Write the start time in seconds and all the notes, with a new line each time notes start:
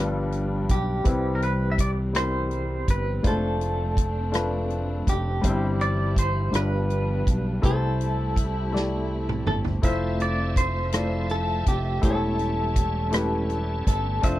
Already playing: G1 G2 F3 G3 D4 F4 A4 B4
0.32 closed hi-hat
0.69 B1 G4, kick, closed hi-hat
1.04 C2 C3 E3 G3 C4 E4 B4, kick, closed hi-hat
1.35 A#4
1.42 B4, closed hi-hat
1.72 E5
1.78 D5, kick, closed hi-hat
2.13 G3 C4 E4 A#4 C5, cross-stick, closed hi-hat
2.22 B5
2.51 closed hi-hat
2.88 G1 B4, kick, closed hi-hat
3.23 F1 F3 G#3 A3 D4 F4 C5, kick, closed hi-hat
3.27 A3 A4
3.61 closed hi-hat
3.97 kick, closed hi-hat
4.32 A3 D4 F4 B4, cross-stick, closed hi-hat
4.70 closed hi-hat
5.07 F1 G4, kick, closed hi-hat
5.42 G1 G2 E3 G3 C4 D4 C5, kick, closed hi-hat
5.46 E4
5.81 D5, closed hi-hat
6.16 C5, kick, closed hi-hat
6.51 G1 G2 F3 G3 B3 D4 F4 B4, closed hi-hat
6.55 B4, cross-stick
6.90 closed hi-hat
7.27 B1, kick, closed hi-hat
7.62 C2 C3 A3 C4 E4 G4 A4 B4, kick, closed hi-hat
7.70 C5
8.01 closed hi-hat
8.36 kick, closed hi-hat
8.72 A3 E4 G4 D5, snare
9.29 mid tom
9.46 G1 A4, mid tom
9.65 floor tom
9.82 F1 F3 A3 C4 E4 F4 A4 C5 E5, kick, closed hi-hat
10.20 D5, closed hi-hat
10.56 C5, kick, closed hi-hat
10.92 A3 E4 F4 D5, cross-stick, closed hi-hat
11.29 A4, closed hi-hat
11.66 F1 G4, kick, closed hi-hat
12.02 E1 E3 G3 A3 C#4 E4 G4 A4 C5, kick, closed hi-hat
12.06 G3 C#4
12.10 C#5
12.39 closed hi-hat
12.76 kick, closed hi-hat
13.11 A3 E4 G4 B4, cross-stick, closed hi-hat
13.50 closed hi-hat
13.87 G1 A4, kick, closed hi-hat
14.22 F1 F3 A3 C4 D4 F4 C5 E5, kick, closed hi-hat
14.26 D3 C4 D4